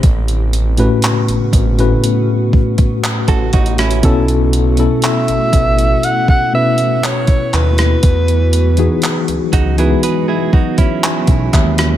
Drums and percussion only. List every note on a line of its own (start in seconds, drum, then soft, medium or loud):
0.03 kick loud
0.03 closed hi-hat medium
0.28 closed hi-hat medium
0.53 closed hi-hat medium
0.77 closed hi-hat medium
1.02 clap loud
1.02 closed hi-hat medium
1.28 closed hi-hat medium
1.53 kick medium
1.53 closed hi-hat medium
1.79 closed hi-hat soft
2.04 closed hi-hat medium
2.53 kick loud
2.78 kick medium
2.78 closed hi-hat medium
3.04 clap loud
3.04 closed hi-hat medium
3.28 kick medium
3.28 closed hi-hat medium
3.53 kick loud
3.53 closed hi-hat soft
3.53 open hi-hat medium
3.66 closed hi-hat medium
3.78 cross-stick loud
3.78 closed hi-hat medium
3.91 closed hi-hat medium
4.03 kick loud
4.03 closed hi-hat medium
4.28 closed hi-hat medium
4.53 closed hi-hat medium
4.77 closed hi-hat soft
5.02 clap loud
5.02 closed hi-hat medium
5.28 closed hi-hat medium
5.53 kick medium
5.53 closed hi-hat medium
5.79 closed hi-hat medium
6.03 closed hi-hat medium
6.28 kick loud
6.78 closed hi-hat medium
7.03 clap loud
7.03 closed hi-hat medium
7.27 kick loud
7.27 closed hi-hat medium
7.53 clap medium
7.53 closed hi-hat soft
7.78 cross-stick loud
7.78 closed hi-hat medium
8.03 kick loud
8.03 closed hi-hat medium
8.28 closed hi-hat medium
8.53 closed hi-hat medium
8.77 closed hi-hat soft
9.02 clap loud
9.02 closed hi-hat medium
9.28 closed hi-hat medium
9.53 kick medium
9.53 closed hi-hat medium
9.78 closed hi-hat medium
10.03 closed hi-hat medium
10.53 kick loud
10.78 kick medium
10.78 closed hi-hat soft
11.03 clap loud
11.03 closed hi-hat medium
11.27 kick loud
11.27 closed hi-hat medium
11.53 kick loud
11.53 clap medium
11.53 closed hi-hat soft
11.78 cross-stick loud
11.78 closed hi-hat medium